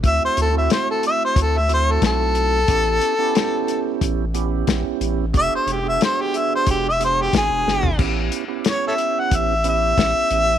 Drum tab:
CC |----------------|----------------|----------------|x---------------|
HH |x-x-x-x-x-x-x-x-|x-x-x-x-x-x-x-x-|x-x-x-x-x-x-x---|--x-x-x-x-x-x-x-|
SD |----o-------o---|----o-------o---|----o-------o-o-|----o-------o---|
FT |----------------|----------------|---------------o|----------------|
BD |o-------o---o---|o-------o---o---|o-------o---o---|o-------o---o---|